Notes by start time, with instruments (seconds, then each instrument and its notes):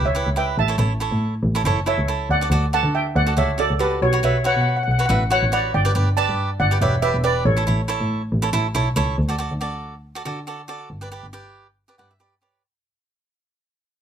Already playing: double bass C#2
0.05 steel pan C#5 E5
0.15 cavaquinho E4 G4 B4
0.26 double bass C#2
0.36 cavaquinho E4 G4 B4, steel pan E5 G5
0.58 double bass A1, steel pan E5 A5
0.68 cavaquinho E4 A4 C#5
0.78 double bass A1, cavaquinho E4 A4 C#5
1.00 cavaquinho E4 A4 C#5
1.12 double bass A2
1.43 double bass A1
1.55 cavaquinho E4 A4 C#5
1.64 double bass F#1, cavaquinho E4 A4 C#5
1.86 cavaquinho E4 A4 C#5, steel pan C#5 E5
1.98 double bass C#2
2.08 cavaquinho E4 A4 C#5
2.29 double bass D2, steel pan D5 F#5
2.41 cavaquinho F#4 A4 D5
2.50 double bass D2, cavaquinho F#4 A4 D5
2.73 cavaquinho F#4 A4 D5, steel pan F#5 A5
2.83 double bass D3
2.95 steel pan E5 G5
3.16 double bass D2, steel pan D5 F#5
3.27 cavaquinho F#4 A4 D5
3.37 double bass C#2, cavaquinho F#4 A4 D5, steel pan C#5 E5
3.58 cavaquinho F#4 A4 D5, steel pan A4 D5
3.70 double bass C#2
3.79 cavaquinho F#4 A4 D5, steel pan G4 B4
4.01 double bass B1, steel pan F#4 C#5
4.13 cavaquinho F#4 B4 C#5
4.23 double bass B1, cavaquinho F#4 B4 C#5, steel pan C#5 E5
4.44 cavaquinho F#4 B4 C#5, steel pan C#5 F#5
4.54 double bass B2, steel pan F#5
4.61 steel pan F#5
4.69 steel pan F#5
4.76 steel pan F#5
4.83 steel pan F#5
4.88 double bass B1, steel pan F#5
4.99 cavaquinho F#4 B4 C#5, steel pan F#5
5.06 cavaquinho F#4 B4, steel pan F#5
5.10 double bass A1, cavaquinho E5, steel pan F#5
5.30 cavaquinho F#4 B4 C#5, steel pan C#5 F#5
5.43 double bass A1
5.52 cavaquinho F#4 B4 C#5, steel pan D5 F#5
5.74 double bass G1, steel pan D5 G5
5.85 cavaquinho G4 B4 D5
5.95 double bass G1, cavaquinho G4 B4 D5
6.17 cavaquinho G4 B4 D5, steel pan D5 A5
6.29 double bass G2
6.60 double bass G1, steel pan D5 F#5
6.71 cavaquinho G4 B4 D5
6.81 double bass E1, cavaquinho G4 B4 D5, steel pan C#5 E5
7.02 cavaquinho G4 B4 D5, steel pan B4 E5
7.14 double bass E1
7.24 cavaquinho G4 B4 D5, steel pan B4 D5
7.45 double bass A1, steel pan A4 C#5
7.57 cavaquinho E4 A4 C#5
7.67 double bass A1, cavaquinho E4 A4 C#5
7.88 cavaquinho E4 A4 C#5
8.00 double bass A2
8.32 double bass A1
8.42 cavaquinho E4 A4 C#5
8.53 double bass A1, cavaquinho E4 A4 C#5
8.75 double bass B1, cavaquinho E4 A4 C#5
8.96 double bass C#2, cavaquinho E4 A4 C#5
9.18 double bass D2
9.29 cavaquinho F#4 A4 D5
9.38 cavaquinho F#4 A4 D5
9.51 double bass D2
9.61 cavaquinho F#4 A4 D5
10.15 cavaquinho F#4 A4 D5
10.25 double bass D3, cavaquinho F#4 A4 D5
10.47 cavaquinho F#4 A4 D5
10.68 cavaquinho F#4 A4 D5
10.90 double bass G1
11.01 cavaquinho G4 B4 D5
11.12 cavaquinho G4 B4 D5
11.23 double bass G1
11.33 cavaquinho G4 B4 D5
11.88 cavaquinho G4 B4 D5
11.98 double bass G2, cavaquinho G4 B4 D5 F#5
12.11 cavaquinho E5
12.20 cavaquinho G4 B4 D5
12.42 cavaquinho G4 B4 C#5 D5